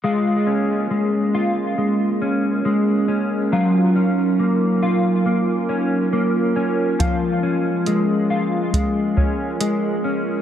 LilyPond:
<<
  \new Staff \with { instrumentName = "Clean electric guitar" } { \time 4/4 \key bes \minor \tempo 4 = 69 <aes f'>8 des'8 aes8 f'8 aes8 des'8 aes8 des'8 | <ges f'>8 des'8 bes8 f'8 bes8 des'8 bes8 des'8 | <f f'>8 des'8 aes8 f'8 aes8 des'8 aes8 des'8 | }
  \new Staff \with { instrumentName = "Ambient pad" } { \time 4/4 \key bes \minor << { <f' bes'>1~ | <f' bes'>1~ | <f' bes'>1 | } \\ { <aes bes des'>1 | <ges ees'>1 | <aes bes des'>1 | } >> }
  \new DrumStaff \with { instrumentName = "Drums" } \drummode { \time 4/4 r4 r4 r4 r4 | r4 r4 r4 r4 | <hh bd>4 hh4 <hh bd>8 bd8 hh4 | }
>>